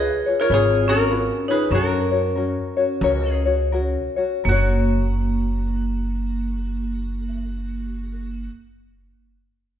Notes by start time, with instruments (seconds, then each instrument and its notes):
Already playing: ukulele F4 G#4 B4 C#5, vibraphone G#4, resonator guitar played with a steel bar B4 D#5
0.26 ukulele F4 G#4 C#5
0.40 vibraphone F4, resonator guitar played with a steel bar A#4 C#5
0.50 upright bass G#1, ukulele F4 G#4 B4 C#5, vibraphone F4, resonator guitar played with a steel bar G#4 C#5
0.85 vibraphone C#4, ukulele F4 G#4 C#5, resonator guitar played with a steel bar F#4 A#4
1.10 ukulele F4 G#4 B4 C#5
1.48 vibraphone D#4, ukulele F4 G#4 C#5, resonator guitar played with a steel bar G#4 B4
1.71 upright bass F#2, vibraphone C#4, ukulele C#4 F#4 A#4 C#5, resonator guitar played with a steel bar A#4
1.75 resonator guitar played with a steel bar F#4
2.11 ukulele C#4 F#4 C#5
2.36 ukulele C#4 F#4 A#4 C#5
2.77 ukulele C#4 F#4 C#5
3.01 upright bass C#2, ukulele C#4 F#4 A#4 C#5
3.30 resonator guitar played with a steel bar G#4
3.46 ukulele C#4 F#4 C#5
3.72 ukulele C#4 F#4 A#4 C#5
4.16 ukulele C#4 F#4 C#5
4.44 upright bass F#1, vibraphone A#3, ukulele C#4 A#4
4.49 resonator guitar played with a steel bar F#4, ukulele F#4 C#5